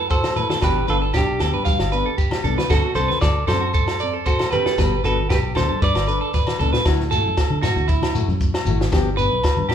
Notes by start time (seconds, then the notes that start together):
Already playing: F#2 B4
0.10 F#4 A4 C5, kick, shekere
0.24 snare, high conga, low agogo
0.36 A3 E4 B4, high conga, low conga, shekere
0.50 A4, snare, high conga
0.61 G1 F3 B3 D4 G4 B4, kick, snare, low agogo, shekere
0.88 G1 B3 D4 F4 A4 B4, high conga, shekere
1.02 A4
1.14 B1 D4 G4, kick, snare, low agogo, shekere
1.40 D2 B3 D4 A4, snare, low conga, low agogo, shekere
1.54 G2 B4
1.65 G2 F5, kick, snare, shekere
1.79 G1, snare, low agogo
1.92 B3 D4 B4, shekere
2.06 A4
2.18 G4, kick, shekere
2.31 snare, high conga, low agogo
2.44 C2 B3 D4 A4, high conga, low conga, shekere
2.58 B4, snare, high conga
2.70 D2 F#3 C4 D4 F#4 A4, kick, snare, low agogo, shekere
2.95 C2 D4 A4 C5, high conga, shekere
2.99 C4
3.08 B4, snare, high conga
3.21 D2 A4 D5, muted clean electric guitar stroke, kick, snare, low agogo, shekere
3.47 F#2 C4 D4 A4 C5, snare, low conga, low agogo, shekere
3.61 F#4
3.74 A4, kick, shekere
3.88 snare, low agogo
4.00 C4 A4 D5, shekere
4.13 A4
4.26 F#4 A4 C5, kick, shekere
4.39 snare, high conga, low agogo
4.51 C4 D4 G4 A4 B4, high conga, low conga, shekere
4.66 A4, snare, high conga
4.78 G1 G3 B3 A4 B4, muted nylon-string guitar stroke, kick, snare, low agogo, shekere
5.04 G1 B3 D4 F#4 A4 B4, high conga, shekere
5.17 high conga
5.29 B1 G4 B4, kick, snare, low agogo, shekere
5.55 D2 B3 D4 A4 C5, snare, low conga, low agogo, shekere
5.69 G2 A4
5.82 G2 B4 D5, kick, snare, shekere
5.95 G1, snare, low agogo
6.07 D4 A4 B4, shekere
6.21 A4
6.34 B4, kick, snare, high conga, shekere
6.47 snare, high conga, low agogo
6.59 C#2 B3 D4 A4, low conga, shekere
6.73 B4, snare, low conga
6.85 D2 F#3 A3 E4 F#4, kick, snare, low agogo, shekere
7.00 snare
7.11 E4 F#4 A4, shekere
7.15 A3
7.25 F#2
7.37 kick, snare, low agogo, shekere
7.50 D3, high conga
7.62 A3 E4 F#4, snare, low conga, low agogo, shekere
7.76 D2, high conga, shekere
7.88 E4, kick, shekere
8.02 snare, high conga, low agogo
8.14 A3 E4 F#4, low conga, shekere
8.28 F#2, shekere
8.41 kick, shekere
8.54 snare, low agogo
8.65 G#1 A3 E4 F#4, low conga, shekere
8.81 snare
8.91 G1 F3 B3 D4 G4, kick, snare, low agogo, shekere
9.17 B3 D4 B4, shekere
9.31 B1
9.44 kick, snare, low agogo, shekere
9.57 G2, high conga
9.69 B3 D4 G4, snare, low conga, low agogo